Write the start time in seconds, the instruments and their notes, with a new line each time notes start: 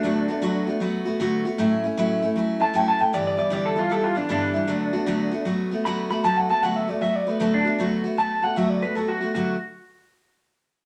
Already playing: clean electric guitar D4
0.03 steel-string acoustic guitar D3 F#3 A3 B3 F#4
0.28 steel-string acoustic guitar A3 B3 F#4
0.42 steel-string acoustic guitar D3 F#3 A3 B3 F#4
0.67 steel-string acoustic guitar A3 B3 F#4
0.80 steel-string acoustic guitar F#3 A3 B3 F#4
1.05 steel-string acoustic guitar A3 B3 F#4
1.20 steel-string acoustic guitar D3 F#3 A3 B3 F#4
1.45 steel-string acoustic guitar A3 B3 F#4
1.58 steel-string acoustic guitar A2 F#3 A3 C#4 E4
1.84 steel-string acoustic guitar A3 C#4 E4
1.97 steel-string acoustic guitar A2 F#3 A3 C#4 E4
2.22 steel-string acoustic guitar A3 C#4 E4
2.36 steel-string acoustic guitar F#3 A3 C#4 E4
2.60 steel-string acoustic guitar A3 C#4 E4, clean electric guitar A5
2.73 steel-string acoustic guitar A2 F#3 A3 C#4 E4, clean electric guitar G5
2.88 clean electric guitar A5
2.99 steel-string acoustic guitar A3 C#4 E4, clean electric guitar G5
3.13 steel-string acoustic guitar G2 D3 E3 G3 B3 E4, clean electric guitar D5
3.27 clean electric guitar D5
3.37 steel-string acoustic guitar E3 G3 B3 E4, clean electric guitar D5
3.50 steel-string acoustic guitar G2 D3 E3 G3 B3 E4, clean electric guitar D5
3.66 clean electric guitar A4
3.76 steel-string acoustic guitar E3 G3 B3 E4, clean electric guitar F4
3.90 steel-string acoustic guitar E3 G3 B3 E4, clean electric guitar A4
4.04 clean electric guitar F4
4.15 steel-string acoustic guitar E3 G3 B3 E4, clean electric guitar D4
4.29 steel-string acoustic guitar G2 D3 E3 G3 B3 E4, clean electric guitar D4
4.54 steel-string acoustic guitar E3 G3 B3 E4
4.67 steel-string acoustic guitar D3 F#3 A3 B3 F#4
4.93 steel-string acoustic guitar A3 B3 F#4
5.06 steel-string acoustic guitar D3 F#3 A3 B3 F#4
5.31 steel-string acoustic guitar A3 B3 F#4
5.45 steel-string acoustic guitar F#3 A3 B3 F#4
5.71 steel-string acoustic guitar A3 B3 F#4
5.85 steel-string acoustic guitar D3 F#3 A3 B3 F#4, clean electric guitar B5
6.10 steel-string acoustic guitar A3 B3 F#4, clean electric guitar B5
6.24 steel-string acoustic guitar D3 F#3 A3 B3 F#4, clean electric guitar A5
6.37 clean electric guitar F#5
6.49 steel-string acoustic guitar A3 B3 F#4, clean electric guitar A5
6.63 steel-string acoustic guitar D3 F#3 A3 B3 F#4, clean electric guitar F#5
6.76 clean electric guitar E5
6.88 steel-string acoustic guitar A3 B3 F#4, clean electric guitar D5
7.01 steel-string acoustic guitar F#3 A3 B3 F#4, clean electric guitar E5
7.16 clean electric guitar D5
7.26 steel-string acoustic guitar A3 B3 F#4, clean electric guitar B4
7.40 steel-string acoustic guitar D3 F#3 A3 B3 F#4, clean electric guitar A4
7.54 clean electric guitar D4
7.65 steel-string acoustic guitar A3 B3 F#4
7.79 steel-string acoustic guitar D3 F#3 A3 B3 F#4
8.04 steel-string acoustic guitar A3 B3 F#4
8.17 steel-string acoustic guitar F#3 A3 B3 F#4, clean electric guitar A5
8.42 steel-string acoustic guitar A3 B3 F#4, clean electric guitar F#5
8.56 steel-string acoustic guitar D3 F#3 A3 B3 F#4, clean electric guitar E5
8.70 clean electric guitar D5
8.82 steel-string acoustic guitar A3 B3 F#4, clean electric guitar B4
8.95 steel-string acoustic guitar F#3 A3 B3 F#4, clean electric guitar A4
9.08 clean electric guitar F#4
9.21 steel-string acoustic guitar A3 B3 F#4
9.35 steel-string acoustic guitar D3 F#3 A3 B3 F#4, clean electric guitar F#4